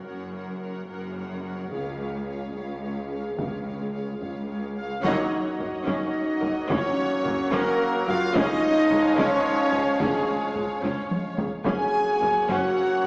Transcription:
Already playing: A#3 F#4
0.06 F#1 F#2 A#4 C#5 F#5
0.34 A#4 C#5 F#5
0.61 A#4 C#5 F#5
0.89 F#1 F#2 A#4 C#5 F#5
1.16 A#4 C#5 F#5
1.44 A#4 C#5 F#5
1.71 C#2 G#3 F4 G#4 C#5 F5, taiko
2.00 G#4 C#5 F5
2.27 G#4 C#5 F5
2.54 C#2 G#4 C#5 F5
2.83 G#4 C#5 F5
3.10 G#4 C#5 F5
3.37 C#2 G#4 C#5 F5, taiko
3.65 G#4 C#5 F5
3.92 G#4 C#5 F5
4.20 C#2 G#4 C#5 F5, taiko
4.49 G#4 C#5 F5
4.76 F4 G#4 C#5 F5
5.03 F#1 F#2 F#3 A#3 C#4 D#4 C#5 D#5 F#5, taiko
5.59 F#1 F#2 A#4, taiko low
5.86 F#1 F#2 C#4, taiko
6.41 F#1 F#2 A#4, taiko low
6.69 F#1 F#2 C#4 C#5, taiko
7.24 F#1 F#2 A#4, taiko low
7.52 F#1 F#2 A#3 C#4 A#4, taiko
8.07 F#1 F#2 F4 A#4 F5, taiko low
8.35 C#2 F3 G#3 C#4 D#4 C#5 D#5 F5, taiko
8.90 C#2 G#4, taiko low
9.17 C#2 C#4 C#5, taiko
9.73 C#2 G#4, taiko low
10.00 C#2 G#3 C#4 G#4, taiko
10.55 C#2 G#4, taiko low
10.83 C#2 C#4, taiko low-mid
11.11 taiko high
11.38 C#2 G#4, taiko low
11.65 F#1 F#2 F#3 A#3 C#4 G#4 C#5 F#5 G#5, taiko
12.21 F#1 F#2 A#4, taiko low
12.48 F#1 F#2 C#4 F#4 F#5, taiko

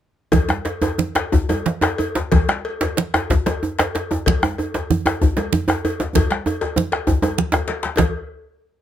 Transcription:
0.32 bombo low, cowbell, djembe slap, djembe tone, high conga, djembe bass, low conga
0.49 bombo rim, djembe slap, djembe tone, high conga
0.65 cowbell, djembe slap
0.82 cowbell, djembe tone
0.83 djembe tone
0.98 djembe tone, low conga
1.15 bombo rim, cowbell, djembe slap
1.32 bombo low, djembe tone, djembe bass
1.49 cowbell, djembe tone, high conga
1.66 djembe slap, low conga
1.81 bombo rim, cowbell, djembe slap, djembe tone
1.98 cowbell, djembe slap, djembe tone
2.15 djembe slap, djembe tone
2.32 bombo low, cowbell, djembe slap, high conga, low conga, djembe bass
2.49 bombo rim, djembe slap, high conga
2.65 cowbell
2.81 cowbell, djembe slap, djembe tone
2.97 djembe slap, low conga
3.14 bombo rim, cowbell, djembe slap, djembe tone
3.30 bombo low, djembe slap, djembe bass
3.46 cowbell, djembe slap, djembe tone, high conga
3.63 djembe slap, djembe tone
3.79 bombo rim, cowbell, djembe slap
3.95 cowbell, djembe slap
4.11 djembe tone
4.26 bombo low, cowbell, djembe slap, high conga, djembe bass, low conga
4.43 bombo rim, djembe slap, high conga, djembe tone
4.58 cowbell, djembe tone
4.74 cowbell, djembe slap, djembe tone
4.90 djembe bass, low conga
5.06 bombo rim, cowbell, djembe slap, djembe tone
5.22 bombo low, djembe tone, djembe bass
5.37 cowbell, djembe slap, djembe tone, high conga
5.53 low conga, djembe bass
5.68 bombo rim, cowbell, djembe slap, djembe tone
5.85 cowbell, djembe tone
6.00 djembe slap, djembe tone
6.15 bombo low, cowbell, djembe tone, djembe bass, low conga
6.30 bombo rim, djembe slap, high conga
6.46 cowbell, djembe tone
6.61 bombo rim, cowbell, djembe tone
6.76 bombo rim, djembe tone, high conga, low conga
6.92 bombo rim, cowbell, djembe slap
7.07 bombo rim, bombo low, djembe slap, djembe tone, high conga, djembe bass
7.22 cowbell, djembe tone, high conga
7.38 bombo rim, djembe bass, low conga
7.52 bombo rim, cowbell, djembe slap, high conga, djembe bass
7.68 cowbell, djembe slap, high conga
7.83 djembe slap, high conga
7.97 bombo low, cowbell, djembe slap, djembe bass, low conga

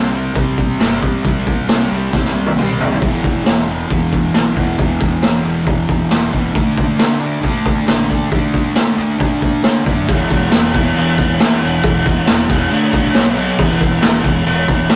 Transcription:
Already playing: C2 C3 G3 C4
0.12 C4
0.17 G3
0.35 C2 C3 G3, kick, open hi-hat
0.39 C4
0.58 kick
0.78 G1 C3 G3, snare, open hi-hat, tambourine
0.84 C4
1.02 C3 C4, kick
1.07 G3
1.23 C2 C3 G3, kick, open hi-hat
1.27 C4
1.47 kick
1.68 C2 C3 G3, snare, open hi-hat, tambourine
1.72 C4
1.91 C2 C4
1.95 G3
2.13 C2 C3 G3, kick, snare
2.17 C4
2.25 snare
2.34 C2
2.46 high tom
2.56 C2 C3 G3, mid tom, tambourine
2.62 C4
2.78 C2 C4, floor tom
2.85 G3
2.92 floor tom
3.02 E1 E2 B2, kick, open hi-hat
3.07 E3
3.24 E1, kick
3.45 E1 E2 B2, snare, open hi-hat, tambourine
3.50 E3
3.68 E3
3.73 B2
3.89 E1 E2 B2, kick, open hi-hat
3.93 E3
4.13 kick
4.33 B1 E2 B2, snare, open hi-hat, tambourine
4.38 E3
4.56 E2 E3, kick
4.60 B2
4.78 E1 E2 B2, kick, open hi-hat
4.82 E3
5.01 kick
5.22 E1 E2 B2, snare, open hi-hat, tambourine
5.27 E3
5.44 E1 E3
5.49 B2
5.65 E1 E2 B2, kick, open hi-hat
5.70 E3
5.89 E1, kick
6.09 E1 E2 B2, snare, open hi-hat, tambourine
6.14 E3
6.32 E1 E3, kick
6.37 B2
6.53 D2 D3 A3, kick, open hi-hat
6.58 D4
6.78 D2, kick
6.98 D2 D3 A3, snare, open hi-hat, tambourine
7.03 D4
7.20 D4
7.25 A3
7.42 D2 D3 A3, kick, open hi-hat
7.47 D4
7.66 kick
7.86 A1 D3 A3, snare, open hi-hat, tambourine
7.91 D4
8.09 D3 D4, kick
8.14 A3
8.31 D2 D3 A3, kick, open hi-hat
8.35 D4
8.54 kick
8.75 D2 D3 A3, snare, open hi-hat, tambourine
8.79 D4
8.97 D2 D4
9.02 A3
9.19 D2 D3 A3, kick, open hi-hat
9.24 D4
9.42 D2, kick
9.63 D2 D3 A3, snare, open hi-hat, tambourine
9.68 D4
9.85 F#2 D4, kick
9.90 A3
10.08 E1 E2 B2 E3, kick, crash
10.30 E1, kick, tambourine, crash
10.52 E1 E2 B2 E3, snare, tambourine, crash
10.74 E1 E2 B2 E3, kick, crash
10.96 E1 E2 B2 E3, tambourine, crash
11.18 E1, kick, tambourine, crash
11.40 D2 E2 B2 E3, snare, tambourine, crash
11.61 E1 E2 B2 E3, tambourine, crash
11.83 E1 E2 B2 E3, kick, crash
12.05 kick, crash
12.26 E1 E2 B2 E3, snare, tambourine, crash
12.49 E1 E2 B2 E3, kick, crash
12.71 D2 D3 A3 D4, tambourine, crash
12.93 C2, kick, tambourine, crash
13.15 B1 B2 F#3 B3, snare, tambourine, crash
13.37 B2 F#3 B3, tambourine, crash
13.58 E1 E2 B2 E3, kick, crash
13.81 E1, kick, crash
14.02 E1 E2 B2 E3, snare, tambourine, crash
14.24 E1 E2 B2 E3, kick, crash
14.46 E1 E2 B2 E3, tambourine, crash
14.68 E1, kick, tambourine, crash
14.90 D2 E2 B2 E3, snare, tambourine, crash

